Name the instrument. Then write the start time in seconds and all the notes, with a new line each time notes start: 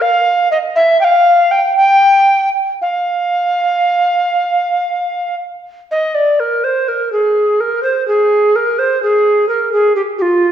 recorder
0.02 F5
0.51 D#5
0.76 E5
1.01 F5 G5
1.51 G5
1.76 G5
2.82 F5
5.91 D#5
6.15 D5
6.40 A#4
6.64 C5
6.88 A#4
7.12 G#4
7.60 A#4
7.83 C5
8.08 G#4
8.56 A#4
8.79 C5
9.03 G#4
9.49 A#4
9.73 G#4
9.96 G4
10.18 F4 G4